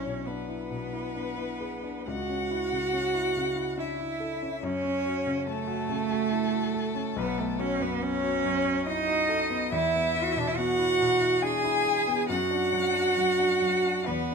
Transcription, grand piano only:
Already playing: B1 D4 E4
0.06 B2
0.28 D4
0.49 E4
0.71 B2
0.93 E4
1.16 D4
1.37 E4
1.60 G#4
1.84 D4
2.08 C#2
2.29 C#4
2.51 E4
2.72 C#3
2.93 C#4
3.14 E4
3.36 C#3
3.56 E4
3.77 D4
3.99 E4
4.20 A4
4.42 C#4
4.63 F#2
4.84 C#4
5.06 F#4
5.26 C#3
5.47 C#4
5.67 F#4
5.89 C#3
6.11 F#4
6.32 E4
6.52 F#4
6.74 A4
6.95 C#4
7.16 B1
7.38 B3
7.59 F#4
7.80 F#2
8.02 B3
8.23 F#4
8.44 F#2
8.65 F#4
8.86 E4
9.07 F#4
9.29 A4
9.50 B3
9.72 E2
9.95 B3
10.15 E4
10.36 B2
10.58 B3
10.79 E4
11.00 B2
11.21 E4
11.42 D4
11.64 E4
11.86 G#4
12.07 B3
12.29 F#2
12.51 D4
12.73 F#3
12.94 D4
13.17 F#3
13.39 D4
13.62 F#3
13.86 D4
14.08 E2

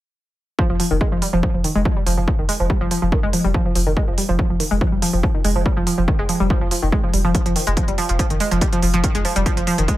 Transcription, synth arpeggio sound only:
0.59 F3
0.70 F3
0.80 F3
0.91 D#3
1.01 G#3
1.12 F3
1.22 G3
1.33 F3
1.43 F3
1.54 F3
1.64 D#3
1.75 G#3
1.85 F3
1.97 G3
2.06 F3
2.18 F3
2.28 F3
2.39 D#3
2.49 G#3
2.60 F3
2.70 G3
2.81 F3
2.91 F3
3.02 F3
3.12 D#3
3.23 G#3
3.33 F3
3.44 G3
3.54 F3
3.66 F3
3.76 F3
3.87 D#3
3.97 G#3
4.08 F3
4.18 G3
4.29 F3
4.39 F3
4.50 F3
4.60 D#3
4.71 G#3
4.81 F3
4.92 G3
5.02 F3
5.13 F3
5.23 F3
5.34 D#3
5.45 G#3
5.56 F3
5.66 G3
5.77 F3
5.87 F3
5.98 F3
6.08 D#3
6.19 G#3
6.29 F3
6.40 G3
6.50 F3
6.61 F3
6.71 F3
6.82 D#3
6.92 G#3
7.04 F3
7.14 G3
7.25 F3
7.35 F3
7.46 F3
7.56 D#3
7.67 G#3
7.77 F3
7.88 G3
7.98 F3
8.09 F3
8.19 F3
8.30 D#3
8.40 G#3
8.52 F3
8.62 G3
8.73 F3
8.83 F3
8.94 F3
9.04 D#3
9.15 G#3
9.25 F3
9.36 G3
9.46 F3
9.57 F3
9.67 F3
9.78 D#3
9.88 G#3

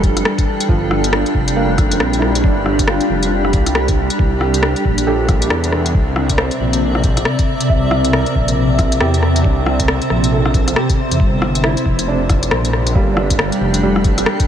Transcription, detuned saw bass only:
Already playing: F1
0.69 G1
1.34 F1
2.00 A#1
2.44 G1
3.09 F1
3.31 F1
3.53 C2
4.19 C2
4.85 A#1
5.51 E2
5.94 C2
6.60 A#1
7.69 C2
8.35 A#1
9.01 E2
9.45 C2
10.10 A#1
11.11 E2
11.20 G1
11.86 F1
12.52 A#1
12.95 G1
13.61 F1

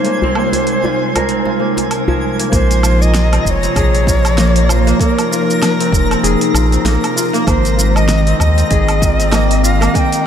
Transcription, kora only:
Already playing: F3 C4 F4
0.05 A#3
0.23 C4
0.36 A#3
0.85 F4
1.16 A#4
1.29 C4
1.47 F4
1.60 A#3
2.08 F3
2.39 A#3
2.52 A#3
2.83 F4
3.32 C4
3.63 C4
3.76 G#4
4.07 F4
4.25 C4
4.38 A#3
4.69 F4
4.87 A#3
5.01 A#3
5.31 F4
5.80 C4
6.11 C4
6.23 G#4
6.55 F4
6.72 C4
6.85 A#3
7.16 F4
7.33 A#3
7.47 A#3
7.77 F4
8.27 C4
8.57 C4
8.70 G#4
9.02 F4
9.19 C4
9.32 A#3
9.63 F4
9.81 A#3
9.94 A#3

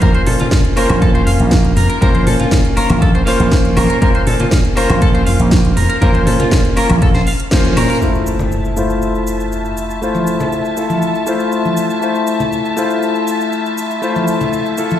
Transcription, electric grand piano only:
0.01 A#3 C#4 F4 C5
0.76 A#3 C#4 F4 C5
2.01 A#3 C#4 F4 C5
2.76 A#3 C#4 F4
3.26 A#3 C#4 F4 C5
4.01 A#3 C#4 F4 C5
4.75 A#3 C#4 F4 C5
6.01 A#3 C#4 F4 C5
6.76 A#3 C#4 F4
7.51 A#3 C#4 F4 C5
8.01 A3 E4 F4 C5
8.77 A3 E4 F4 C5
10.02 A3 E4 F4 C5
10.77 A3 E4 F4 A4
11.27 A3 E4 F4 C5
12.01 A3 E4 F4 C5
12.77 A3 E4 F4 C5
14.02 A3 E4 F4 C5
14.78 A3 E4 F4 A4

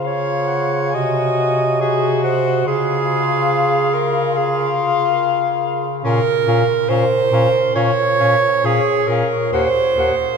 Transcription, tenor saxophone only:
0.08 F4
0.95 F#4
1.81 F#4
2.66 F4
4.33 F4
6.04 C#4
6.47 C#4
6.89 C#4
7.33 C#4
7.75 C#4
8.20 C#4
8.64 C#4
9.09 C#4
9.53 A#3
9.97 A#3

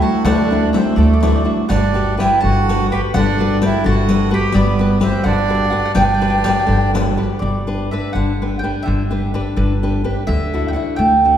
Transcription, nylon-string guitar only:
0.03 D4 E4 F#4
0.26 A3
0.51 D4 E4 F#4
0.74 D4 E4 F#4
0.98 A3
1.22 D4 E4 F#4
1.44 D4 E4 F#4
1.68 G3
1.94 F#4 G4 B4
2.17 F#4 G4 B4
2.42 D3
2.69 F#4 G4 B4
2.91 F#4 G4 B4
3.15 D3
3.40 F#4 G4 B4
3.62 F#4 G4 B4
3.84 D3
4.09 F#4 G4 B4
4.30 F#4 G4 B4
4.53 G3
4.79 F#4 G4 B4
5.00 F#4 G4 B4
5.24 D3
5.49 F#4 G4 B4
5.71 F#4 G4 B4
5.95 B3
6.21 F#4 G4 B4
6.45 F#4 G4 B4
6.67 D3
6.94 F#4 G4 B4
7.17 F#4 G4 B4
7.42 G3
7.67 D4 G4 B4
7.92 D4 G4 B4
8.16 D3
8.42 D4 G4 B4
8.63 D4 G4 B4
8.86 D3
9.11 D4 G4 B4
9.34 D4 G4 B4
9.56 D3
9.83 D4 G4 B4
10.04 D4 G4 B4
10.27 D3
10.54 D4 E4 F#4
10.74 D4 E4 F#4
10.98 A3
11.25 D4 E4 F#4

